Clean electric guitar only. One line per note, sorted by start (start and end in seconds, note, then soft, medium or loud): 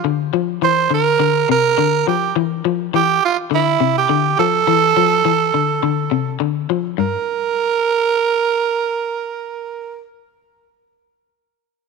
0.05 0.30 D3 medium
0.33 0.59 F3 medium
0.62 0.88 E3 medium
0.90 1.16 D3 medium
1.20 1.45 D3 loud
1.49 1.75 C3 medium
1.78 2.03 D3 loud
2.07 2.33 F3 medium
2.36 2.61 E3 loud
2.65 2.90 F3 medium
2.94 3.19 E3 loud
3.51 3.77 D3 loud
3.80 4.06 C3 medium
4.09 4.35 D3 loud
4.39 4.64 F3 medium
4.67 4.93 E3 loud
4.97 5.22 F3 loud
5.25 5.50 E3 medium
5.54 5.79 D3 medium
5.83 6.08 D3 loud
6.11 6.37 C3 medium
6.40 6.66 D3 medium
6.70 6.95 F3 medium
6.98 7.15 G2 medium